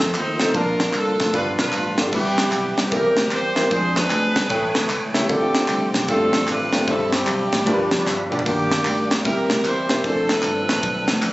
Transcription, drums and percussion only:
0.01 tambourine
0.14 clap, ride, tambourine
0.40 snare, ride, tambourine
0.54 kick, ride, tambourine
0.80 snare, ride, tambourine
0.93 clap, ride, tambourine
1.20 kick, snare, ride, tambourine
1.33 kick, ride, tambourine
1.59 snare, ride, tambourine
1.72 clap, ride, tambourine
1.98 snare, ride, tambourine
2.12 kick, crash, tambourine
2.38 snare, ride, tambourine
2.52 clap, ride, tambourine
2.77 snare, ride, tambourine
2.91 kick, ride, tambourine
3.17 snare, ride, tambourine
3.31 clap, ride, tambourine
3.56 snare, ride, tambourine
3.71 kick, ride, tambourine
3.96 snare, ride, tambourine
4.10 clap, ride, tambourine
4.36 snare, ride, tambourine
4.49 kick, ride, tambourine
4.75 snare, ride, tambourine
4.89 clap, ride, tambourine
5.14 snare, ride, tambourine
5.29 kick, ride, tambourine
5.55 snare, ride, tambourine
5.68 clap, ride, tambourine
5.94 snare, ride, tambourine
6.08 kick, ride, tambourine
6.33 snare, ride, tambourine
6.47 clap, ride, tambourine
6.73 snare, ride, tambourine
6.87 kick, ride, tambourine
7.13 snare, ride, tambourine
7.27 clap, ride, tambourine
7.52 kick, snare, ride, tambourine
7.66 kick, ride, tambourine
7.91 snare, ride, tambourine
8.07 snare, clap, tambourine
8.32 mid tom, tambourine
8.39 floor tom
8.46 kick, ride, tambourine
8.71 snare, ride, tambourine
8.85 clap, ride, tambourine
9.11 snare, ride, tambourine
9.25 kick, ride, tambourine
9.50 snare, ride, tambourine
9.64 clap, ride, tambourine
9.89 snare, ride, tambourine
10.04 kick, ride, tambourine
10.29 snare, ride, tambourine
10.42 clap, ride, tambourine
10.69 snare, ride, tambourine
10.83 kick, ride, tambourine
11.08 snare, ride, tambourine
11.22 clap, ride, tambourine

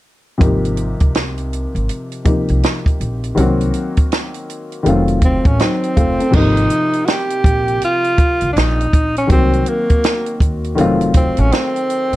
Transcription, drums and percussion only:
0.41 kick, closed hi-hat
0.65 closed hi-hat
0.77 closed hi-hat
1.00 kick, closed hi-hat
1.15 snare, closed hi-hat
1.38 closed hi-hat
1.53 closed hi-hat
1.76 closed hi-hat
1.89 closed hi-hat
2.12 closed hi-hat
2.25 kick, closed hi-hat
2.48 closed hi-hat
2.63 snare, closed hi-hat
2.86 kick, closed hi-hat
3.01 closed hi-hat
3.24 closed hi-hat
3.37 closed hi-hat
3.61 closed hi-hat
3.74 closed hi-hat
3.97 kick, closed hi-hat
4.12 snare, closed hi-hat
4.34 closed hi-hat
4.50 closed hi-hat
4.72 closed hi-hat
4.86 closed hi-hat
5.08 closed hi-hat
5.22 kick, closed hi-hat
5.45 kick, closed hi-hat
5.60 snare, closed hi-hat
5.84 closed hi-hat
5.97 kick, closed hi-hat
6.20 closed hi-hat
6.33 kick, crash
6.57 closed hi-hat
6.70 closed hi-hat
6.93 closed hi-hat
7.08 snare, closed hi-hat
7.30 closed hi-hat
7.44 kick, closed hi-hat
7.68 closed hi-hat
7.82 closed hi-hat
8.04 closed hi-hat
8.18 kick, closed hi-hat
8.41 closed hi-hat
8.57 snare, closed hi-hat
8.81 closed hi-hat
8.93 kick, closed hi-hat
9.16 closed hi-hat
9.30 kick, closed hi-hat
9.53 closed hi-hat
9.66 closed hi-hat
9.90 kick, closed hi-hat
10.04 snare, closed hi-hat
10.26 closed hi-hat
10.40 kick, closed hi-hat
10.64 closed hi-hat
10.78 closed hi-hat
11.01 closed hi-hat
11.14 kick, closed hi-hat
11.37 closed hi-hat
11.52 snare, closed hi-hat
11.76 closed hi-hat
11.90 closed hi-hat
12.13 closed hi-hat

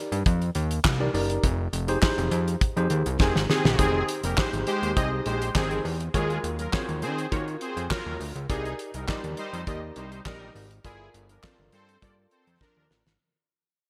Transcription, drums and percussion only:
0.12 closed hi-hat
0.26 kick, closed hi-hat
0.42 closed hi-hat
0.55 closed hi-hat
0.71 closed hi-hat
0.85 kick, snare, clap
1.15 open hi-hat
1.30 closed hi-hat
1.44 kick, closed hi-hat
1.73 closed hi-hat
1.88 closed hi-hat
2.02 kick, snare, clap
2.18 closed hi-hat
2.31 closed hi-hat
2.48 closed hi-hat
2.61 kick, closed hi-hat
2.77 closed hi-hat
2.90 closed hi-hat
3.06 closed hi-hat
3.20 kick, snare
3.36 snare
3.50 snare
3.65 snare
3.79 kick, closed hi-hat
4.09 closed hi-hat
4.24 closed hi-hat
4.38 kick, snare, clap
4.53 closed hi-hat
4.67 closed hi-hat
4.83 closed hi-hat
4.97 kick, closed hi-hat
5.26 closed hi-hat
5.42 closed hi-hat
5.55 kick, snare, clap
5.71 closed hi-hat
5.85 open hi-hat
6.00 closed hi-hat
6.14 kick, closed hi-hat
6.30 closed hi-hat
6.44 closed hi-hat
6.59 closed hi-hat
6.73 kick, snare, clap
6.89 closed hi-hat
7.02 closed hi-hat
7.18 closed hi-hat
7.32 kick, closed hi-hat
7.48 closed hi-hat
7.61 closed hi-hat
7.77 closed hi-hat
7.91 kick, snare, clap
8.21 open hi-hat
8.36 closed hi-hat
8.50 kick, closed hi-hat
8.65 closed hi-hat
8.79 closed hi-hat
8.94 closed hi-hat
9.08 kick, snare, clap
9.24 closed hi-hat
9.37 closed hi-hat
9.54 closed hi-hat
9.67 kick, closed hi-hat
9.96 closed hi-hat
10.12 closed hi-hat
10.26 kick, snare, clap
10.56 open hi-hat
10.71 closed hi-hat
10.85 kick, closed hi-hat
11.14 closed hi-hat
11.29 closed hi-hat
11.43 kick, snare, clap
11.72 closed hi-hat
11.89 closed hi-hat
12.02 kick, closed hi-hat
12.31 closed hi-hat
12.47 closed hi-hat
12.61 kick, snare
12.91 snare
13.07 snare

